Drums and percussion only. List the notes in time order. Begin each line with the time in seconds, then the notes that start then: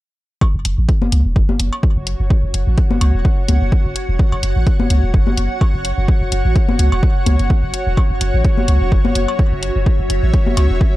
0.41 kick, cowbell
0.65 closed hi-hat
0.89 kick, closed hi-hat
1.02 high conga
1.12 closed hi-hat
1.36 kick
1.49 high conga
1.59 closed hi-hat
1.73 cowbell
1.83 kick
2.07 closed hi-hat
2.30 kick
2.54 closed hi-hat
2.78 kick, closed hi-hat
2.91 high conga
3.01 closed hi-hat, cowbell
3.25 kick
3.48 closed hi-hat, high conga
3.72 kick
3.96 closed hi-hat
4.19 kick
4.32 cowbell
4.43 closed hi-hat
4.67 kick, closed hi-hat
4.80 high conga
4.90 closed hi-hat
5.14 kick
5.27 high conga
5.37 closed hi-hat
5.61 kick, cowbell
5.85 closed hi-hat
6.08 kick
6.32 closed hi-hat
6.56 kick, closed hi-hat
6.69 high conga
6.79 closed hi-hat
6.92 cowbell
7.03 kick
7.26 closed hi-hat, high conga
7.39 closed hi-hat
7.50 kick
7.74 closed hi-hat
7.97 kick, cowbell
8.21 closed hi-hat
8.45 kick, closed hi-hat
8.58 high conga
8.68 closed hi-hat
8.92 kick
9.05 high conga
9.15 closed hi-hat
9.28 cowbell
9.39 kick
9.63 closed hi-hat
9.86 kick
10.10 closed hi-hat
10.34 kick, closed hi-hat
10.47 high conga
10.57 closed hi-hat, cowbell
10.81 kick